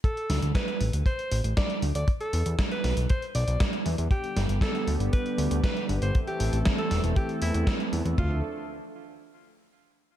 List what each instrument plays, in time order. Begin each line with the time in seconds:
0.04 alto saxophone A4, kick, closed hi-hat
0.17 closed hi-hat
0.30 analog synth bass D2, snare, open hi-hat
0.42 analog synth bass D2, closed hi-hat
0.55 alto saxophone B4, kick, snare, closed hi-hat
0.68 closed hi-hat
0.81 analog synth bass A1, open hi-hat
0.93 analog synth bass D2, closed hi-hat
1.06 alto saxophone C5, kick, closed hi-hat
1.19 closed hi-hat
1.31 analog synth bass A1, open hi-hat
1.44 analog synth bass A1, closed hi-hat
1.57 alto saxophone D5, kick, snare, closed hi-hat
1.70 closed hi-hat
1.82 analog synth bass D2, open hi-hat
1.95 analog synth bass D2, alto saxophone D5, closed hi-hat
2.08 kick, closed hi-hat
2.20 alto saxophone A4, closed hi-hat
2.33 analog synth bass E2, open hi-hat
2.46 analog synth bass E2, closed hi-hat
2.59 kick, snare, closed hi-hat
2.71 alto saxophone B4, closed hi-hat
2.84 analog synth bass B1, snare, open hi-hat
2.97 analog synth bass B1, closed hi-hat
3.10 alto saxophone C5, kick, closed hi-hat
3.22 closed hi-hat
3.35 analog synth bass B1, alto saxophone D5, open hi-hat
3.48 analog synth bass B1, closed hi-hat
3.60 kick, snare, closed hi-hat
3.73 closed hi-hat
3.86 analog synth bass E2, open hi-hat
3.98 analog synth bass E2, closed hi-hat
4.11 analog synth pad D3 G3 B3 G4, alto saxophone G4, kick, closed hi-hat
4.24 closed hi-hat
4.37 analog synth bass G1, snare, open hi-hat
4.49 analog synth bass G1, closed hi-hat
4.61 alto saxophone A4, kick, snare, closed hi-hat
4.75 closed hi-hat
4.87 analog synth bass D2, open hi-hat
5.00 analog synth bass G1, closed hi-hat
5.13 alto saxophone B4, kick, closed hi-hat
5.26 closed hi-hat
5.38 analog synth bass D2, open hi-hat
5.51 analog synth bass D2, closed hi-hat
5.64 alto saxophone B4, kick, snare, closed hi-hat
5.77 closed hi-hat
5.89 analog synth bass G1, open hi-hat
6.02 analog synth bass G1, alto saxophone C5, closed hi-hat
6.15 analog synth pad E3 A3 C4 A4, kick, closed hi-hat
6.27 alto saxophone G4, closed hi-hat
6.40 analog synth bass A1, open hi-hat
6.53 analog synth bass A1, closed hi-hat
6.65 kick, snare, closed hi-hat
6.78 alto saxophone A4, closed hi-hat
6.91 analog synth bass E1, snare, open hi-hat
7.04 analog synth bass E1, closed hi-hat
7.16 alto saxophone G4, kick, closed hi-hat
7.29 closed hi-hat
7.42 analog synth bass E2, alto saxophone E4, open hi-hat
7.54 analog synth bass E2, closed hi-hat
7.67 kick, snare, closed hi-hat
7.80 closed hi-hat
7.93 analog synth bass E2, open hi-hat
8.05 analog synth bass E2, closed hi-hat
8.18 analog synth bass D2, analog synth pad F3 A3 D4 A4, alto saxophone F4, kick, floor tom, ride bell